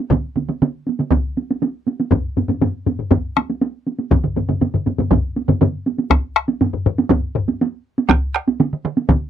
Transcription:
0.11 taiko, taiko mid, taiko high
0.36 taiko mid, taiko high
0.49 taiko mid, taiko high
0.62 taiko mid, taiko high
0.87 taiko high
0.99 taiko mid, taiko high
1.11 taiko, taiko mid, taiko high
1.37 taiko high
1.51 taiko high
1.63 taiko high
1.88 taiko high
2.00 taiko high
2.11 taiko, taiko low-mid, taiko high
2.37 taiko low-mid, taiko high
2.49 taiko low-mid, taiko high
2.61 taiko low-mid, taiko high
2.86 taiko low-mid, taiko high
2.99 taiko low-mid
3.11 taiko, taiko low-mid, taiko high
3.37 taiko rim, taiko high
3.50 taiko high
3.61 taiko high
3.87 taiko high
3.99 taiko high
4.11 taiko, taiko low-mid, taiko mid, taiko high
4.24 taiko low-mid, taiko mid
4.36 taiko low-mid, taiko mid, taiko high
4.49 taiko low-mid, taiko mid, taiko high
4.61 taiko low-mid, taiko mid, taiko high
4.74 taiko low-mid, taiko mid
4.86 taiko low-mid, taiko mid, taiko high
4.98 taiko low-mid, taiko mid, taiko high
5.11 taiko, taiko low-mid, taiko mid, taiko high
5.36 taiko high
5.49 taiko low-mid, taiko mid, taiko high
5.61 taiko low-mid, taiko mid, taiko high
5.86 taiko high
5.98 taiko high
6.10 taiko rim, taiko, taiko high
6.36 taiko rim
6.48 taiko high
6.61 taiko low-mid, taiko high
6.74 taiko low-mid
6.86 taiko low-mid
6.98 taiko high
7.10 taiko, taiko low-mid, taiko high
7.35 taiko low-mid
7.48 taiko high
7.61 taiko high
7.98 taiko high
8.09 taiko rim, taiko, taiko high
8.35 taiko rim
8.48 taiko high
8.60 taiko mid, taiko high
8.73 taiko mid
8.85 taiko mid
8.97 taiko high
9.09 taiko, taiko mid, taiko high

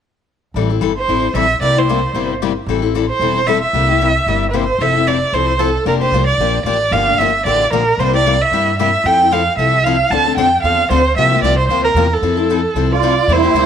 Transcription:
0.54 A1 E3 G3 C4 E4 A4
0.69 C4 E4 A4
0.81 G1 E3 G3 C4 E4 A4
0.97 C5
1.08 A1 E3 G3 C4 E4 A4
1.34 A#1 E3 G3 C4 E4 A4 E5
1.61 C2 C3 G3 A#3 E4 G4 D5
1.76 A#3 E4 G4 C5
1.89 C3 G3 A#3 E4 G4
2.13 G1 C3 G3 A#3 E4 G4
2.42 C3 G3 A#3 E4 G4
2.66 A1 E3 G3 C4 E4 A4
2.82 C4 E4 A4
2.95 E3 G3 C4 E4 A4
3.09 C5
3.19 E1 E3 G3 C4 E4 A4
3.47 E3 G3 C4 E4 A4 E5
3.62 E5
3.73 C2 C3 G3 A#3 E4 G4
3.89 A#3 E4 G4
4.01 C3 G3 A#3 E4 G4
4.26 G1 C3 G3 A#3 E4 G4
4.50 C3 G3 A#3 E4 G4 B4
4.55 C5
4.78 F1 F3 C4 E4 A4 E5
4.95 C4 E4 A4
5.07 F3 C4 E4 A4 D5
5.33 C2 F3 C4 E4 A4 C5
5.59 F3 C4 E4 A4
5.86 F1 F3 A#3 D4 G4 A#4
6.01 A#3 D4 G4 C5
6.12 C2 F3 A#3 D4 G4
6.27 D5
6.38 A#1 F3 A#3 D4 G4
6.64 A1 F3 A#3 D4 G4 D5
6.91 G1 D3 F3 A#3 D4 G4 F5
7.08 A#3 D4 G4
7.19 G1 D3 F3 A#3 D4 G4 E5
7.45 A1 D3 F3 A#3 D4 G4 D5
7.71 A#1 D3 F3 A#3 D4 G4 A#4
7.98 C2 C3 G3 A#3 E4 G4 C5
8.13 A#3 E4 G4 D5
8.26 C3 G3 A#3 E4 G4
8.41 E5
8.51 G2 C3 G3 A#3 E4 G4
8.79 C3 G3 A#3 E4 G4 E5
9.04 F2 F3 C4 E4 A4 G5
9.21 C4 E4 A4
9.32 F3 C4 E4 A4 F5
9.56 C2 F3 C4 E4 A4 E5
9.84 F3 C4 E4 A4 F5
10.10 D2 D3 F3 C4 D4 A4 A5
10.26 C4 D4 A4
10.37 F2 D3 F3 C4 D4 A4 G5
10.63 E2 D3 F3 C4 D4 A4 F5
10.90 D2 D3 F3 C4 D4 A4 C5
11.16 C2 C3 F3 A#3 F4 G4 E5
11.32 A#3 F4 G4
11.42 C2 C3 F3 A#3 F4 G4 D5
11.58 C5
11.69 D2 C3 F3 A#3 F4 G4 C5
11.84 A#4
11.94 E2 C3 F3 A#3 F4 G4
12.13 A4
12.22 F2 F3 C4 E4 A4
12.37 C4 E4 A4
12.50 F3 C4 E4 A4
12.74 C2 F3 C4 E4 A4
12.92 F4 D5
13.03 F3 C4 E4 A4
13.27 E2 C3 G3 A#3 E4 G4
13.32 C5
13.43 A#3 E4 G4
13.54 D2 C3 G3 A#3 E4 G4

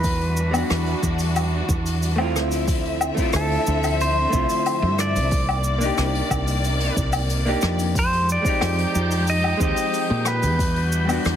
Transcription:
Already playing: E2 B4
0.04 E3 G3 D4 F#4, kick, open hi-hat, cabasa
0.21 open hi-hat
0.37 cabasa
0.51 G3 B3, open hi-hat, cabasa, low woodblock
0.56 D4 F#4
0.70 E2, cross-stick, open hi-hat, cabasa
0.86 open hi-hat
1.03 E2, kick, cabasa
1.19 open hi-hat, cabasa
1.36 open hi-hat, cabasa, low woodblock
1.69 E2, kick, cabasa
1.86 open hi-hat, cabasa
2.02 open hi-hat, cabasa
2.16 A3 C4, low woodblock
2.21 E4 F4
2.35 D2 D3 F3 C4 E5, cross-stick, cabasa
2.51 open hi-hat, cabasa
2.68 kick, open hi-hat, cabasa
2.85 open hi-hat
3.01 cabasa, low woodblock
3.15 A3 C4, kick, open hi-hat, cabasa
3.19 E4 F4
3.33 D2 A4, cross-stick, open hi-hat, cabasa
3.51 open hi-hat
3.67 D2, cabasa
3.83 open hi-hat, cabasa, low woodblock
4.00 C5, open hi-hat, cabasa
4.30 C2 A3 C4, kick, cabasa
4.34 E4 F4
4.49 open hi-hat, cabasa
4.65 open hi-hat, cabasa, low woodblock
4.82 G2
4.99 D5, cross-stick, cabasa
5.15 C2, open hi-hat, cabasa
5.31 C3 D#3 A#3 D5, kick, open hi-hat, cabasa
5.48 open hi-hat, low woodblock
5.64 cabasa
5.78 A#3 D4, open hi-hat, cabasa
5.83 D#4 G4
5.98 C2, cross-stick, open hi-hat, cabasa
6.15 open hi-hat
6.30 C2, kick, cabasa, low woodblock
6.47 open hi-hat, cabasa
6.64 open hi-hat, cabasa
6.80 open hi-hat
6.97 C2, kick, cabasa
7.13 open hi-hat, cabasa, low woodblock
7.30 open hi-hat, cabasa
7.45 A#3 D4 D#4 G4, open hi-hat
7.62 F2, cross-stick, cabasa
7.79 open hi-hat, cabasa
7.95 F3 G#3 D#4 G4 C5 G6, kick, open hi-hat, cabasa
8.12 open hi-hat
8.29 D5, cabasa
8.42 G#3 C4, kick, open hi-hat, cabasa
8.47 D#4 G4
8.61 F2, cross-stick, open hi-hat, cabasa, low woodblock
8.78 open hi-hat
8.95 F2, cabasa
9.11 open hi-hat, cabasa
9.27 D#5, open hi-hat, cabasa
9.44 low woodblock
9.57 D#2 G#3 C4, kick, cabasa
9.62 D#4 G4 D#5
9.76 open hi-hat, cabasa
9.93 open hi-hat, cabasa
10.10 A#2
10.25 B4, cross-stick, cabasa, low woodblock
10.43 E2, open hi-hat, cabasa
10.59 E3 G3 D4 F#4, kick, open hi-hat, cabasa
10.76 open hi-hat
10.92 cabasa
11.05 G3 B3, low woodblock
11.09 D4 F#4, open hi-hat, cabasa
11.25 E2, cross-stick, open hi-hat, cabasa

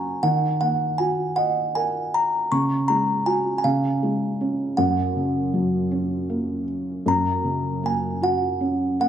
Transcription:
Already playing: F#2 C#3 A#3 C#4 F#4 G#5
0.23 D#3 F#5
0.61 A#3 F#5
0.98 F#4 G#5
1.36 D#5 F#5
1.75 A#4 G#5
2.14 A#5
2.52 C#3 C#6
2.88 G#3 A#5
3.26 F#4 G#5
3.58 G#5
3.64 C#3 F5
4.03 G#3
4.41 C#4
4.77 F#2 F#5
5.16 C#3
5.54 F#3
5.91 C#4
6.30 A#3
7.06 F#2 A#5
7.44 C#3
7.83 A#3 G#5
8.22 F#4 F#5
8.61 C#4
9.00 A#3 F#5

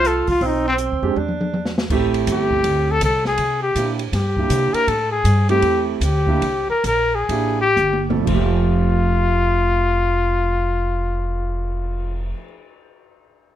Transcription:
Already playing: C2 F4
0.05 A4, closed hi-hat
0.27 C2 F4, kick, open hi-hat
0.41 B1 C4, kick, open hi-hat
0.46 D#4
0.68 C4
0.78 closed hi-hat
0.92 D2
1.02 F2 G#3 C4 D4 G4
1.16 E2 D4
1.28 mid tom
1.41 mid tom
1.54 mid tom
1.66 snare
1.78 snare
1.90 A1 A3 C4 E4 G4, kick, crash
2.14 ride
2.27 G1, kick, hi-hat pedal, ride
2.32 G4
2.51 kick
2.64 D2, kick, ride
2.91 A4
3.01 C2 A4, kick, hi-hat pedal, ride
3.25 G#4, snare
3.38 C3, kick, ride
3.63 G4
3.76 A#2 A#3 D4 E4 G4, kick, hi-hat pedal, ride
3.99 ride
4.12 G2 G4, kick, snare, ride
4.37 A#3 D4 E4 G4, kick
4.50 C3, kick, hi-hat pedal, ride
4.73 A#4, muted upright bass stroke, ride
4.87 A2 A4, kick, ride
5.12 G#4
5.24 G2, kick, hi-hat pedal, ride
5.49 A3 C4 E4 G4, ride
5.62 E2, kick, ride
6.01 D2, kick, hi-hat pedal, ride
6.05 G4
6.27 A#3 D4 E4 G4, kick
6.42 C2, kick, ride
6.69 A#4, muted upright bass stroke
6.84 A#1 A#4, kick, hi-hat pedal, ride
7.15 G#4
7.29 A1 A#3 D4 E4 G4, kick, ride
7.61 G4
7.76 G1, hi-hat pedal, high tom
7.93 high tom
8.10 F2 A3 C4 E4 A4, high tom
8.23 F1 F2 F3
8.27 A3 F4, kick, crash
8.32 G4 E5
8.61 cymbal swell

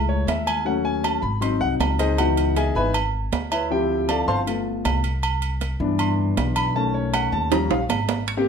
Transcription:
Already playing: C#2 G#3 A3 E4
0.09 C#5
0.27 D#2 E5, low timbale, low agogo
0.47 G#5, low agogo
0.65 F#3 A3 C#4 F#5
0.85 G#5
1.04 A5, low timbale, low agogo
1.22 G#1 B5
1.41 F#3 C4 D#4 C6, low agogo
1.61 C2 F#5
1.80 C#2, low timbale, low agogo
1.99 D#4 G#4 C5 D#5, low agogo
2.18 E3 B3 D#4 F#4 F#5, low agogo
2.37 low agogo
2.56 G#4 D#5 E5 G#5, low timbale, low agogo
2.75 G#1 E3 B3 D#4 B4 E5 G#5 B5
2.94 low agogo
3.32 D2, low timbale, low agogo
3.52 E4 B4 C#5 E5, low agogo
3.70 F3 C4 E4 G4 G5
4.09 A4 D5 F5 A5, low timbale, low agogo
4.28 G1 C5 F5 A5 C6
4.47 A3 B3 F4, low agogo
4.85 C2, low timbale, low agogo
5.04 low agogo
5.23 low agogo
5.42 low agogo
5.61 low timbale, low agogo
5.80 G2 E3 B3 D4
5.99 C6, low agogo
6.37 B1, low timbale, low agogo
6.56 B5, low agogo
6.75 D#3 A3 C#4 A5
6.94 C#5
7.14 F#5, low timbale, low agogo
7.32 D#2 A5
7.51 F3 G3 C#4 A#5, high timbale, low agogo
7.70 A#1 F5, high timbale
7.89 G#1, low timbale, low agogo
8.09 low timbale, low agogo
8.28 high timbale
8.37 A#3 C4 G4

